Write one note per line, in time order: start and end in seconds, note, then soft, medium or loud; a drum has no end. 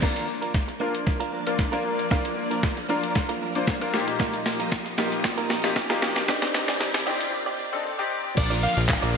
0.02 3.90 F3 medium
0.02 0.26 A#3 medium
0.02 0.68 A#3 medium
0.02 6.25 A#3 medium
0.02 0.26 D4 medium
0.02 0.68 D4 medium
0.02 3.90 D4 medium
0.02 0.68 F4 medium
0.02 0.27 F4 medium
0.02 3.90 A#4 medium
0.02 0.68 A#4 loud
0.02 0.27 A#4 medium
0.02 3.90 D5 medium
0.02 kick loud
0.02 snare medium
0.02 crash medium
0.02 riser medium
0.16 closed hi-hat medium
0.28 muted clean electric guitar stroke soft
0.42 0.53 A#3 soft
0.42 0.52 D4 medium
0.42 0.52 F4 medium
0.42 0.52 A#4 medium
0.42 closed hi-hat medium
0.54 kick loud
0.54 snare medium
0.68 muted clean electric guitar stroke medium
0.68 closed hi-hat medium
0.80 0.95 A#3 medium
0.80 1.35 A#3 medium
0.80 0.94 D4 medium
0.80 1.35 D4 medium
0.80 1.35 F4 medium
0.80 0.93 F4 medium
0.80 1.35 A#4 medium
0.80 0.93 A#4 medium
0.94 muted clean electric guitar stroke soft
0.94 closed hi-hat medium
1.06 muted clean electric guitar stroke soft
1.06 kick loud
1.06 snare medium
1.20 1.31 A#3 medium
1.20 1.32 D4 medium
1.20 1.32 F4 medium
1.20 1.32 A#4 medium
1.20 closed hi-hat medium
1.32 1.44 A#3 medium
1.32 1.44 D4 medium
1.32 1.44 F4 medium
1.32 1.44 A#4 medium
1.46 1.68 A#3 medium
1.46 1.68 D4 medium
1.46 1.68 F4 medium
1.46 1.68 A#4 medium
1.46 muted clean electric guitar stroke soft
1.46 closed hi-hat medium
1.59 muted clean electric guitar stroke soft
1.59 kick loud
1.59 snare medium
1.72 2.05 A#3 medium
1.72 1.83 A#3 medium
1.72 2.05 D4 medium
1.72 1.84 D4 medium
1.72 1.84 F4 medium
1.72 2.05 F4 medium
1.72 1.85 A#4 medium
1.72 2.05 A#4 loud
1.72 closed hi-hat soft
1.85 muted clean electric guitar stroke soft
1.99 muted clean electric guitar stroke soft
1.99 closed hi-hat medium
2.11 2.35 A#3 medium
2.11 2.77 A#3 medium
2.11 2.77 D4 medium
2.11 2.35 D4 medium
2.11 2.77 F4 medium
2.11 2.35 F4 medium
2.11 2.77 A#4 loud
2.11 2.36 A#4 medium
2.11 kick loud
2.11 snare medium
2.25 closed hi-hat medium
2.37 muted clean electric guitar stroke soft
2.51 2.61 A#3 soft
2.51 2.61 D4 medium
2.51 2.61 F4 medium
2.51 2.61 A#4 medium
2.51 closed hi-hat medium
2.63 muted clean electric guitar stroke soft
2.63 kick loud
2.63 snare medium
2.77 muted clean electric guitar stroke soft
2.77 closed hi-hat medium
2.89 3.03 A#3 medium
2.89 3.44 A#3 medium
2.89 3.44 D4 medium
2.89 3.03 D4 medium
2.89 3.44 F4 medium
2.89 3.02 F4 medium
2.89 3.44 A#4 medium
2.89 3.02 A#4 loud
3.03 muted clean electric guitar stroke soft
3.03 closed hi-hat medium
3.15 muted clean electric guitar stroke soft
3.15 kick loud
3.15 snare medium
3.29 3.40 A#3 medium
3.29 3.40 D4 medium
3.29 3.41 F4 medium
3.29 3.41 A#4 medium
3.29 closed hi-hat medium
3.41 3.52 A#3 medium
3.41 3.53 D4 medium
3.41 3.53 F4 medium
3.41 3.53 A#4 medium
3.55 3.77 A#3 medium
3.55 3.77 D4 medium
3.55 3.77 F4 medium
3.55 3.77 C5 medium
3.55 muted clean electric guitar stroke soft
3.55 closed hi-hat medium
3.67 muted clean electric guitar stroke soft
3.67 kick loud
3.67 snare medium
3.81 3.92 A#3 medium
3.81 3.94 D4 medium
3.81 3.92 F4 medium
3.81 3.94 A#4 loud
3.81 muted clean electric guitar stroke soft
3.81 closed hi-hat medium
3.93 6.26 A#2 medium
3.93 6.26 F3 medium
3.93 4.81 A#3 medium
3.93 6.26 D#4 medium
3.93 4.81 D#4 medium
3.93 4.81 F4 medium
3.93 8.33 G4 medium
3.93 4.81 G4 loud
3.93 6.26 D#5 loud
3.93 snare medium
4.07 muted clean electric guitar stroke soft
4.07 closed hi-hat medium
4.19 4.44 G3 medium
4.19 4.44 D#4 loud
4.19 4.44 F4 loud
4.19 4.44 A#4 medium
4.19 kick loud
4.19 snare medium
4.19 shaker medium
4.33 closed hi-hat medium
4.33 shaker medium
4.46 muted clean electric guitar stroke soft
4.46 snare medium
4.46 open hi-hat medium
4.46 shaker medium
4.59 4.70 G3 medium
4.59 4.70 D#4 medium
4.59 4.70 F4 medium
4.59 4.69 A#4 medium
4.59 closed hi-hat medium
4.59 shaker medium
4.72 kick loud
4.72 snare loud
4.72 shaker medium
4.86 muted clean electric guitar stroke soft
4.86 closed hi-hat medium
4.86 shaker medium
4.98 5.12 G3 medium
4.98 5.52 A#3 medium
4.98 5.52 D#4 medium
4.98 5.12 D#4 medium
4.98 5.53 F4 medium
4.98 5.11 F4 medium
4.98 5.53 G4 medium
4.98 5.10 A#4 medium
4.98 snare loud
4.98 open hi-hat medium
4.98 shaker soft
5.12 muted clean electric guitar stroke soft
5.12 closed hi-hat medium
5.12 shaker medium
5.24 muted clean electric guitar stroke soft
5.24 kick loud
5.24 snare loud
5.24 shaker medium
5.38 5.49 G3 medium
5.38 5.49 D#4 medium
5.38 5.50 F4 medium
5.38 5.50 A#4 medium
5.38 closed hi-hat medium
5.38 shaker medium
5.50 5.61 G3 medium
5.50 5.61 D#4 medium
5.50 5.62 F4 medium
5.50 5.62 A#4 medium
5.50 snare loud
5.50 open hi-hat medium
5.50 shaker medium
5.64 5.85 A#3 medium
5.64 5.85 D#4 medium
5.64 5.86 F4 medium
5.64 5.86 G4 medium
5.64 muted clean electric guitar stroke medium
5.64 snare loud
5.64 closed hi-hat medium
5.64 shaker medium
5.76 muted clean electric guitar stroke medium
5.76 kick loud
5.76 snare loud
5.76 shaker medium
5.90 6.01 G3 medium
5.90 6.22 A#3 medium
5.90 6.22 D#4 medium
5.90 6.01 D#4 medium
5.90 6.22 F4 medium
5.90 6.02 F4 medium
5.90 6.22 G4 loud
5.90 6.02 A#4 medium
5.90 snare loud
5.90 closed hi-hat medium
5.90 shaker medium
6.02 snare loud
6.02 open hi-hat medium
6.02 shaker medium
6.16 muted clean electric guitar stroke soft
6.16 snare loud
6.16 closed hi-hat medium
6.16 shaker medium
6.28 8.35 D#3 medium
6.28 6.94 C4 medium
6.28 6.52 C4 medium
6.28 8.35 C4 medium
6.28 6.94 D4 medium
6.28 6.94 D#4 medium
6.28 6.53 D#4 medium
6.28 6.94 G4 loud
6.28 6.53 G4 medium
6.28 8.35 D5 medium
6.28 6.53 D5 loud
6.28 kick loud
6.28 snare loud
6.28 shaker medium
6.42 snare loud
6.42 closed hi-hat medium
6.42 shaker medium
6.54 muted clean electric guitar stroke soft
6.54 snare loud
6.54 open hi-hat medium
6.54 shaker medium
6.68 6.79 C4 medium
6.68 6.79 D#4 medium
6.68 6.78 G4 medium
6.68 6.78 D5 medium
6.68 snare loud
6.68 closed hi-hat medium
6.68 shaker medium
6.80 muted clean electric guitar stroke soft
6.80 snare loud
6.80 shaker medium
6.94 muted clean electric guitar stroke soft
6.94 snare loud
6.94 closed hi-hat medium
6.94 shaker medium
7.06 7.21 C4 medium
7.06 7.61 C4 medium
7.06 7.61 D4 medium
7.06 7.61 D#4 medium
7.06 7.20 D#4 medium
7.06 7.61 G4 medium
7.06 7.20 G4 loud
7.06 7.19 D5 loud
7.06 open hi-hat medium
7.06 shaker medium
7.20 muted clean electric guitar stroke soft
7.20 closed hi-hat medium
7.20 shaker medium
7.32 muted clean electric guitar stroke soft
7.46 7.57 C4 medium
7.46 7.58 D#4 medium
7.46 7.58 G4 medium
7.46 7.59 D5 medium
7.58 7.70 C4 medium
7.58 7.70 D#4 medium
7.58 7.70 G4 medium
7.58 7.71 D5 medium
7.72 7.94 C4 medium
7.72 7.94 D4 medium
7.72 7.94 D#4 medium
7.72 7.94 A4 medium
7.72 muted clean electric guitar stroke soft
7.85 muted clean electric guitar stroke soft
7.98 8.31 C4 loud
7.98 8.31 D4 medium
7.98 8.31 D#4 medium
7.98 8.31 G4 loud
7.98 muted clean electric guitar stroke medium
8.24 muted clean electric guitar stroke soft
8.37 8.67 A#1 medium
8.37 9.17 D3 medium
8.37 8.81 F3 medium
8.37 9.17 F3 medium
8.37 8.81 A#3 medium
8.37 9.17 A#3 medium
8.37 8.81 D4 medium
8.37 8.81 F4 medium
8.37 9.17 F4 medium
8.37 8.81 A#4 medium
8.37 9.17 A#4 medium
8.37 8.55 D5 loud
8.37 muted clean electric guitar stroke soft
8.37 kick loud
8.37 crash loud
8.37 downlifter medium
8.37 shaker medium
8.50 8.61 D4 medium
8.50 8.62 F4 medium
8.50 8.62 A#4 medium
8.50 8.63 D5 medium
8.50 closed hi-hat medium
8.50 shaker medium
8.63 8.74 D4 medium
8.63 8.74 F4 medium
8.63 8.75 A#4 medium
8.63 8.75 D5 medium
8.63 8.81 F5 medium
8.63 open hi-hat medium
8.63 shaker medium
8.77 8.97 A#1 loud
8.77 muted clean electric guitar stroke soft
8.77 closed hi-hat medium
8.77 shaker medium
8.89 9.17 F3 medium
8.89 9.17 A#3 medium
8.89 9.17 D4 medium
8.89 9.17 F4 medium
8.89 9.17 A#4 loud
8.89 muted clean electric guitar stroke medium
8.89 kick loud
8.89 snare medium
8.89 clap loud
8.89 shaker medium
9.02 9.17 A#1 medium
9.02 9.13 D4 medium
9.02 9.14 F4 medium
9.02 9.14 A#4 medium
9.02 9.15 D5 loud
9.02 closed hi-hat medium
9.02 shaker medium